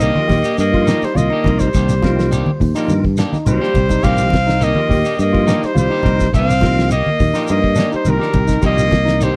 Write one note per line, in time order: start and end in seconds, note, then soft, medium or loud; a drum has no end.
0.00 0.19 D#3 medium
0.00 0.19 A#3 medium
0.00 0.60 A#3 medium
0.00 0.20 D4 medium
0.00 0.10 D#4 medium
0.00 0.20 G4 medium
0.00 0.58 D#5 loud
0.00 ride bell medium
0.00 high conga soft
0.00 shekere loud
0.15 0.39 F3 medium
0.15 0.39 A#3 medium
0.15 0.39 D#4 medium
0.15 0.40 G4 loud
0.15 high conga medium
0.28 0.42 D#2 loud
0.28 0.52 G4 medium
0.28 kick medium
0.28 snare soft
0.28 open hi-hat medium
0.28 low conga medium
0.28 shekere soft
0.43 0.62 A#3 soft
0.43 0.62 D4 medium
0.43 0.62 G4 medium
0.43 ride bell medium
0.43 claves medium
0.43 shekere medium
0.58 0.92 G2 medium
0.58 1.07 A#3 medium
0.58 1.06 D#5 loud
0.58 ride bell medium
0.58 high conga soft
0.58 shekere medium
0.73 1.02 F3 medium
0.73 1.03 A#3 medium
0.73 1.03 D#4 medium
0.73 0.85 F4 medium
0.73 1.03 F4 medium
0.73 kick medium
0.86 1.05 D#3 medium
0.86 1.05 A#3 medium
0.86 1.05 D4 medium
0.86 1.11 D#4 medium
0.86 1.06 G4 medium
0.86 snare medium
0.86 ride bell medium
0.86 claves medium
0.86 shekere medium
1.02 1.20 G3 medium
1.02 1.18 C5 medium
1.02 muted fingered electric bass stroke soft
1.02 snare soft
1.02 ride bell medium
1.02 shekere soft
1.15 1.28 C2 medium
1.15 1.64 A#3 medium
1.15 1.28 F4 medium
1.15 1.61 D#5 loud
1.15 ride bell medium
1.15 high conga medium
1.15 shekere medium
1.30 1.49 A#3 soft
1.30 1.49 D4 medium
1.30 1.42 D#4 medium
1.30 1.49 G4 medium
1.30 claves medium
1.44 1.68 C2 medium
1.44 1.69 F3 medium
1.44 1.69 A#3 medium
1.44 1.68 D#4 medium
1.44 1.69 D#4 medium
1.44 1.69 A#4 medium
1.44 kick medium
1.44 ride bell medium
1.44 high conga medium
1.44 low conga medium
1.44 shekere soft
1.59 2.76 G3 medium
1.59 2.75 C5 medium
1.59 kick medium
1.59 ride bell medium
1.59 shekere medium
1.73 2.41 C2 medium
1.73 1.92 D#3 medium
1.73 1.93 A#3 medium
1.73 1.93 D4 medium
1.73 1.93 G4 medium
1.73 kick loud
1.73 ride bell medium
1.73 high conga soft
1.73 claves medium
1.73 shekere medium
1.89 snare soft
1.89 shekere medium
2.02 2.32 F3 medium
2.02 2.32 A#3 medium
2.02 2.32 D#4 medium
2.02 2.26 F4 medium
2.02 2.33 G4 loud
2.02 kick medium
2.02 snare medium
2.02 ride bell medium
2.02 high conga loud
2.19 snare medium
2.19 shekere soft
2.32 2.49 D#3 medium
2.32 2.50 A#3 medium
2.32 2.50 D4 medium
2.32 2.50 G4 medium
2.32 ride bell medium
2.32 high conga soft
2.32 claves medium
2.32 shekere loud
2.46 high conga medium
2.60 2.72 D#2 loud
2.60 kick medium
2.60 open hi-hat medium
2.60 low conga medium
2.60 shekere soft
2.75 3.04 F3 medium
2.75 2.93 A#3 medium
2.75 3.05 A#3 medium
2.75 2.92 D4 medium
2.75 2.99 D#4 medium
2.75 3.05 D#4 medium
2.75 2.92 G4 medium
2.75 3.06 G4 loud
2.75 ride bell medium
2.75 claves medium
2.75 shekere medium
2.88 3.23 G2 loud
2.88 ride bell medium
2.88 high conga medium
2.88 shekere medium
3.04 kick medium
3.04 high conga medium
3.17 3.36 D#3 medium
3.17 3.36 A#3 medium
3.17 3.31 D4 medium
3.17 3.36 D4 medium
3.17 3.36 G4 medium
3.17 snare medium
3.17 ride bell medium
3.17 claves medium
3.17 shekere medium
3.33 3.56 D#4 medium
3.33 muted fingered electric bass stroke soft
3.33 snare soft
3.33 high conga medium
3.33 shekere soft
3.45 3.58 C2 medium
3.45 3.69 F3 medium
3.45 3.70 A#3 medium
3.45 3.70 D#4 medium
3.45 3.70 G4 medium
3.45 4.06 C5 loud
3.45 ride bell medium
3.45 low conga loud
3.45 shekere loud
3.50 4.08 G3 medium
3.61 3.79 A#3 soft
3.61 3.79 D4 soft
3.61 3.78 G4 medium
3.61 3.85 G4 medium
3.61 snare soft
3.61 claves medium
3.74 3.98 C2 medium
3.74 kick medium
3.74 ride bell medium
3.74 low conga medium
3.74 shekere soft
3.89 4.02 D#4 medium
3.89 kick medium
3.89 low conga medium
3.89 shekere medium
4.03 4.71 C2 medium
4.03 4.21 D#3 medium
4.03 4.33 F3 medium
4.03 4.21 A#3 medium
4.03 4.33 A#3 medium
4.03 4.65 C4 loud
4.03 4.22 D4 medium
4.03 4.33 D#4 medium
4.03 4.27 G4 loud
4.03 4.22 G4 medium
4.03 4.33 G4 medium
4.03 4.65 F5 loud
4.03 kick loud
4.03 ride bell medium
4.03 high conga soft
4.03 low conga medium
4.03 claves medium
4.03 shekere medium
4.18 snare soft
4.18 shekere medium
4.30 kick medium
4.30 ride bell medium
4.30 high conga medium
4.34 snare medium
4.47 4.71 D#4 medium
4.47 snare medium
4.47 shekere soft
4.60 4.79 D#3 medium
4.60 4.79 A#3 medium
4.60 5.20 A#3 medium
4.60 4.79 D4 medium
4.60 4.79 G4 medium
4.60 5.20 D#5 loud
4.60 ride bell medium
4.60 high conga soft
4.60 claves medium
4.60 shekere medium
4.75 4.99 F3 medium
4.75 4.99 A#3 medium
4.75 5.00 D#4 medium
4.75 5.00 G4 medium
4.75 high conga medium
4.89 5.02 D#2 loud
4.89 5.13 G4 medium
4.89 kick medium
4.89 open hi-hat medium
4.89 high conga medium
4.89 low conga medium
4.89 shekere soft
5.05 5.23 A#3 soft
5.05 5.22 D4 soft
5.05 5.22 G4 medium
5.05 ride bell medium
5.05 claves medium
5.05 shekere medium
5.17 5.53 G2 loud
5.17 5.67 D#5 loud
5.17 ride bell medium
5.17 high conga soft
5.17 shekere medium
5.22 5.67 A#3 medium
5.33 5.62 F3 medium
5.33 5.63 A#3 medium
5.33 5.63 D#4 medium
5.33 5.44 F4 medium
5.33 5.63 G4 loud
5.33 kick medium
5.47 5.65 D#3 medium
5.47 5.65 A#3 medium
5.47 5.65 D4 medium
5.47 5.71 D#4 medium
5.47 5.66 G4 medium
5.47 snare medium
5.47 ride bell medium
5.47 claves medium
5.47 shekere loud
5.63 5.78 G3 medium
5.63 5.78 C5 medium
5.63 muted fingered electric bass stroke soft
5.63 snare soft
5.63 ride bell medium
5.63 shekere soft
5.74 5.88 C2 loud
5.74 5.87 F4 medium
5.74 6.31 C5 loud
5.74 ride bell soft
5.74 high conga medium
5.74 shekere medium
5.80 6.32 G3 medium
5.89 6.08 A#3 soft
5.89 6.08 D4 medium
5.89 6.01 D#4 medium
5.89 6.08 G4 medium
5.89 claves medium
6.03 6.27 C2 medium
6.03 6.27 F3 medium
6.03 6.27 A#3 medium
6.03 6.27 D#4 medium
6.03 6.28 D#4 medium
6.03 6.28 G4 medium
6.03 kick medium
6.03 ride bell medium
6.03 high conga medium
6.03 low conga medium
6.03 shekere soft
6.20 kick medium
6.20 snare soft
6.20 ride bell medium
6.20 shekere medium
6.33 7.00 C2 medium
6.33 6.51 D#3 medium
6.33 6.51 A#3 medium
6.33 6.51 D4 medium
6.33 6.52 G4 medium
6.33 6.88 F5 loud
6.33 kick loud
6.33 ride bell medium
6.33 high conga soft
6.33 low conga medium
6.33 claves medium
6.33 shekere medium
6.39 6.90 C4 loud
6.50 snare soft
6.50 shekere loud
6.61 6.91 F3 medium
6.61 6.91 A#3 medium
6.61 6.91 D#4 medium
6.61 6.85 F4 medium
6.61 6.91 G4 loud
6.61 kick medium
6.61 snare medium
6.61 ride bell medium
6.61 high conga loud
6.61 low conga medium
6.78 snare medium
6.78 shekere soft
6.90 7.09 A#3 medium
6.90 7.09 G4 medium
6.90 7.45 D#5 loud
6.90 muted clean electric guitar stroke medium
6.90 ride bell medium
6.90 claves medium
6.90 shekere medium
6.94 7.46 A#3 medium
7.06 high conga medium
7.19 7.32 D#2 loud
7.19 kick medium
7.19 open hi-hat medium
7.19 low conga medium
7.19 shekere soft
7.34 7.63 F3 medium
7.34 7.64 A#3 medium
7.34 7.52 A#3 medium
7.34 7.52 D4 medium
7.34 7.58 D#4 medium
7.34 7.64 D#4 medium
7.34 7.52 G4 medium
7.34 7.64 G4 medium
7.34 snare soft
7.34 ride bell medium
7.34 claves medium
7.34 shekere medium
7.48 7.83 G2 loud
7.48 7.90 A#3 medium
7.48 7.90 D#5 loud
7.48 ride bell medium
7.48 high conga soft
7.48 shekere medium
7.64 kick medium
7.75 7.95 D#3 medium
7.75 7.95 A#3 medium
7.75 7.88 D4 medium
7.75 7.95 D4 medium
7.75 7.95 G4 medium
7.75 snare medium
7.75 ride bell medium
7.75 claves medium
7.75 shekere medium
7.92 8.08 G3 medium
7.92 8.15 D#4 medium
7.92 muted fingered electric bass stroke soft
7.92 shekere soft
7.96 8.11 C5 medium
8.05 8.18 C2 loud
8.05 8.63 D#3 medium
8.05 8.29 F3 medium
8.05 8.29 A#3 medium
8.05 8.30 D#4 medium
8.05 8.30 G4 medium
8.05 ride bell medium
8.05 high conga medium
8.05 shekere medium
8.10 8.65 A#4 loud
8.19 8.38 D4 medium
8.19 8.43 G4 medium
8.19 8.38 G4 medium
8.19 snare soft
8.19 claves medium
8.33 8.56 C2 medium
8.33 kick medium
8.33 ride bell medium
8.33 high conga medium
8.33 low conga medium
8.33 shekere soft
8.48 8.59 D#4 medium
8.48 kick medium
8.48 snare soft
8.48 shekere medium
8.61 9.30 C2 loud
8.61 8.81 D#3 medium
8.61 8.91 F3 medium
8.61 8.92 A#3 medium
8.61 8.81 A#3 medium
8.61 8.81 D4 medium
8.61 8.92 D#4 medium
8.61 8.86 G4 loud
8.61 8.81 G4 medium
8.61 8.92 G4 medium
8.61 kick loud
8.61 ride bell medium
8.61 claves medium
8.61 shekere medium
8.66 9.25 A#3 medium
8.66 9.25 D#5 loud
8.78 snare soft
8.78 shekere loud
8.91 kick medium
8.91 snare medium
8.91 ride bell medium
8.91 high conga loud
9.05 9.29 D#4 medium
9.05 snare medium
9.05 shekere soft
9.20 9.36 D#3 medium
9.20 9.36 G3 medium
9.20 9.36 A#3 medium
9.20 9.36 D4 medium
9.20 9.36 G4 medium
9.20 9.36 C5 loud
9.20 ride bell medium
9.20 high conga soft
9.20 claves medium
9.20 shekere loud